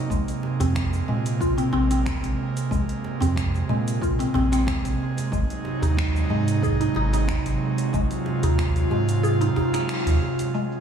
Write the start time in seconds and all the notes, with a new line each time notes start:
Already playing: C3 A#3
0.10 A#1 G#3, kick, cabasa
0.28 closed hi-hat, cabasa
0.43 djembe slap
0.60 F2 C4, closed hi-hat, djembe bass, cabasa
0.75 finger snap, kick, cabasa
0.93 djembe slap, cabasa
1.08 A#2 G#3
1.26 closed hi-hat, cabasa
1.41 F4, kick, cabasa
1.58 C4, closed hi-hat, cabasa
1.73 A#1 C4, djembe slap
1.91 C4, closed hi-hat, cabasa
2.06 finger snap, kick, cabasa
2.23 A#1, closed hi-hat, cabasa
2.57 closed hi-hat, cabasa
2.71 A#1 G#3, kick, cabasa
2.89 closed hi-hat, cabasa
3.04 djembe slap
3.21 F2 C4, closed hi-hat, djembe bass, cabasa
3.36 finger snap, kick, cabasa
3.54 djembe slap, cabasa
3.69 A#2 G#3, djembe tone
3.88 closed hi-hat, cabasa
4.01 F4, kick, cabasa
4.19 C4, closed hi-hat, cabasa
4.34 A#1 C4, djembe slap, djembe bass
4.52 C4, finger snap, closed hi-hat, cabasa
4.67 finger snap, kick, cabasa
4.84 A#1, closed hi-hat, djembe slap, cabasa
5.17 closed hi-hat, djembe slap, cabasa
5.32 G#1 C3 F#3 G#3 D#4, kick, cabasa
5.50 closed hi-hat, cabasa
5.65 djembe slap
5.82 D#2 D#4, closed hi-hat, djembe bass, cabasa
5.97 finger snap, kick, cabasa
6.15 djembe slap, cabasa
6.30 G#2 G#3
6.48 closed hi-hat, cabasa
6.62 G#4, kick, cabasa
6.80 D#4, closed hi-hat, cabasa
6.95 G#1 D#4, djembe slap
7.13 D#4, closed hi-hat, cabasa
7.28 finger snap, kick, cabasa
7.45 G#1, closed hi-hat, cabasa
7.78 closed hi-hat, cabasa
7.93 G#1 G#3 F4, kick, cabasa
8.11 closed hi-hat, cabasa
8.26 djembe slap
8.43 D#2 D#4, closed hi-hat, djembe bass, cabasa
8.58 finger snap, kick, cabasa
8.76 closed hi-hat, djembe slap, cabasa
8.90 G#2 G#3, djembe tone
9.09 closed hi-hat, cabasa
9.23 G#4, cabasa
9.41 D#4, closed hi-hat, cabasa
9.56 D#4, djembe slap, djembe bass
9.73 D#4, finger snap, closed hi-hat, cabasa
9.89 finger snap, cabasa
10.06 D#2, closed hi-hat, djembe slap, cabasa
10.21 djembe tone
10.39 closed hi-hat, djembe slap, djembe tone, cabasa
10.53 C#3 G#3 A#3 C4 G#4 C5, cabasa
10.72 cabasa